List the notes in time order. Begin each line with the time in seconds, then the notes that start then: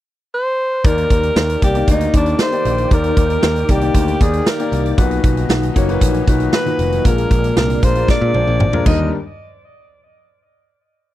0.34 C5
0.84 D#2 D#3 A#3 D#4 G4 A#4 D5, kick, closed hi-hat
0.98 closed hi-hat
1.10 D#2, kick, closed hi-hat
1.23 closed hi-hat
1.36 D#2, snare
1.50 closed hi-hat
1.62 C2 A#3 D#4 G4 D5, kick, closed hi-hat
1.75 A#3 D#4 G4 D5, closed hi-hat
1.88 D2 D#4, kick, closed hi-hat
2.01 closed hi-hat
2.13 D#2 A#3 D4 D#4 G4 D5, kick, closed hi-hat
2.26 closed hi-hat
2.39 C5, snare
2.52 A#3 D#4 G4 D5, closed hi-hat
2.65 A#1, closed hi-hat
2.78 closed hi-hat
2.90 D#2 D#3 A#3 D#4 G4 A#4 D5, kick, closed hi-hat
3.04 closed hi-hat
3.17 D#2, kick, closed hi-hat
3.30 closed hi-hat
3.43 D#2, snare
3.56 closed hi-hat
3.68 C2 A#3 D#4 G4 D5, kick, closed hi-hat
3.81 A#3 D#4 G4 D5, closed hi-hat
3.94 D2, kick, closed hi-hat
4.08 closed hi-hat
4.20 D#2 A#3 D#4 G4 G#4 D5, kick, closed hi-hat
4.33 closed hi-hat
4.46 A#4, snare
4.58 A#3 D#4 G4 D5, closed hi-hat
4.72 C2, closed hi-hat
4.86 closed hi-hat
4.97 B1 A#2 B2 D#3 F#3 D#4 F#4 B4, kick, closed hi-hat
5.11 closed hi-hat
5.24 B1, kick, closed hi-hat
5.37 closed hi-hat
5.49 B1, snare
5.63 closed hi-hat
5.75 F#1 A#3 D#4 F#4 C#5, kick, closed hi-hat
5.88 A#2 D#4 F#4 B4, closed hi-hat
6.01 A#1, kick, closed hi-hat
6.14 closed hi-hat
6.27 B1 A#2 D#4 F#4 B4, kick, closed hi-hat
6.40 closed hi-hat
6.53 B4, snare
6.66 A#2 D#4 F#4 B4, closed hi-hat
6.79 F1, closed hi-hat
6.92 closed hi-hat
7.05 A#1 A#2 G#3 D4 F4 A#4, kick, closed hi-hat
7.18 closed hi-hat
7.31 A#1, kick, closed hi-hat
7.44 closed hi-hat
7.57 C2 A#4, snare
7.70 closed hi-hat
7.82 A#1 G#3 D4 F4 A#4 C5, kick, closed hi-hat
7.95 G#3 D4 F4 A#4, closed hi-hat
8.08 D5, kick, snare
8.21 A#2
8.34 A#1 G#3 D4 F4 C5, high tom
8.47 A#1
8.60 G#1, mid tom
8.73 G#3 D4 F4 A#4, mid tom
8.85 D#2 D3 G3 D4 D#4 A#4 D#5, kick, crash